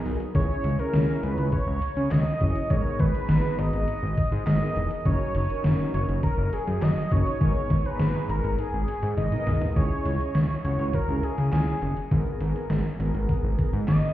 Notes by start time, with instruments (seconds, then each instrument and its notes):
Already playing: analog polysynth B3 D#4 G#4 A#4
0.06 analog synth bass B1, open hi-hat
0.20 closed hi-hat
0.35 analog synth bass C#2, analog polysynth C#4 E4 G#4 C#5, analog synth lead C#5, kick, closed hi-hat
0.64 analog synth bass C#2, closed hi-hat
0.79 analog polysynth C#4 E4 G#4 C#5, analog synth lead A#4, closed hi-hat
0.93 analog synth bass C#2, snare, closed hi-hat
1.23 analog synth bass C#2, analog synth lead B4, closed hi-hat
1.38 analog synth bass C#2, closed hi-hat
1.52 analog synth lead C#5, kick, closed hi-hat
1.67 analog synth bass C#2
1.82 closed hi-hat
1.97 analog synth bass C#3, closed hi-hat
2.11 analog synth bass C#2, analog synth lead D#5, snare, clap, closed hi-hat
2.41 analog synth bass F#1, analog polysynth C#4 E4 G#4 C#5, kick, closed hi-hat
2.56 closed hi-hat
2.70 analog synth bass G#1, analog polysynth B3 D#4 G#4 A#4, analog synth lead C#5, kick, closed hi-hat
2.99 analog synth bass G#1, analog synth lead B4, kick, closed hi-hat
3.14 analog polysynth B3 D#4 G#4 A#5, closed hi-hat
3.29 analog synth bass G#1, snare, closed hi-hat
3.59 analog synth bass G#1, analog synth lead D#5, closed hi-hat
3.73 analog synth bass G#1, closed hi-hat
3.88 closed hi-hat
4.03 analog synth bass G#1
4.17 kick, closed hi-hat
4.32 analog synth bass G#2, closed hi-hat
4.47 analog synth bass G#1, analog synth lead D#5, snare, clap, closed hi-hat
4.61 analog polysynth B3 D#4 G#4 A#4
4.76 analog synth bass E1, closed hi-hat
4.91 closed hi-hat
5.05 analog synth bass F#1, analog polysynth C#4 D#4 F#4 A#4, analog synth lead C#5, kick, closed hi-hat
5.35 analog synth bass F#1, closed hi-hat
5.50 analog polysynth C#4 D#4 F#4 A#4, closed hi-hat
5.64 analog synth bass F#1, snare, closed hi-hat
5.94 analog synth bass F#1, analog synth lead C#5, closed hi-hat
6.09 analog synth bass F#1, closed hi-hat
6.23 analog synth lead A#4, kick, closed hi-hat
6.38 analog synth bass F#1
6.53 analog synth lead G#4, closed hi-hat
6.67 analog synth bass F#2, closed hi-hat
6.82 analog synth bass F#1, analog synth lead D#5, snare, clap, closed hi-hat
7.12 analog synth bass F#1, analog polysynth C#4 D#4 F#4 A#4, analog synth lead C#5, kick, closed hi-hat
7.26 closed hi-hat
7.41 analog synth bass G#1, analog polysynth B3 D#4 G#4 A#4, kick, closed hi-hat
7.70 analog synth bass G#1, kick, closed hi-hat
7.85 analog polysynth B3 D#4 G#4 A#5, analog synth lead B4, closed hi-hat
7.99 analog synth bass G#1, snare, closed hi-hat
8.29 analog synth bass G#1, analog synth lead A#4, closed hi-hat
8.44 analog synth bass G#1, closed hi-hat
8.59 analog synth lead G#4, closed hi-hat
8.73 analog synth bass G#1
8.88 closed hi-hat
9.03 analog synth bass G#2, closed hi-hat
9.17 analog synth bass G#1, analog synth lead D#5, closed hi-hat, high tom
9.32 analog polysynth B3 D#4 G#4 A#4, mid tom
9.47 analog synth bass B1, mid tom, open hi-hat
9.62 closed hi-hat, floor tom
9.76 analog synth bass C#2, analog polysynth C#4 E4 G#4, analog synth lead C#5, kick, closed hi-hat
10.06 analog synth bass C#2, closed hi-hat
10.21 closed hi-hat
10.35 analog synth bass C#2, snare, closed hi-hat
10.64 analog synth bass C#2, analog polysynth C#4 E4 F#4, analog synth lead C#5, closed hi-hat
10.79 analog synth bass C#2, closed hi-hat
10.93 analog synth lead A#4, kick, closed hi-hat
11.08 analog synth bass C#2, analog polysynth C#4 E4 G#4
11.23 analog synth lead G#4, closed hi-hat
11.38 analog synth bass C#3, closed hi-hat
11.53 analog synth bass C#2, analog synth lead G#4, snare, clap, closed hi-hat
11.82 analog synth bass F#1, closed hi-hat
11.97 closed hi-hat
12.11 analog synth bass G#1, analog polysynth B3 G#4 A#4, kick, closed hi-hat
12.41 analog synth bass G#1, analog polysynth B3 G#4 A#4, closed hi-hat
12.56 closed hi-hat
12.70 analog synth bass G#1, snare, closed hi-hat
13.00 analog synth bass G#1, analog polysynth B3 G#4 A#4, closed hi-hat
13.14 analog synth bass G#1, closed hi-hat
13.29 kick, closed hi-hat
13.44 analog synth bass G#1
13.59 kick, closed hi-hat
13.73 analog synth bass G#2, closed hi-hat
13.88 analog synth bass G#1, analog synth lead D#5, snare, clap, closed hi-hat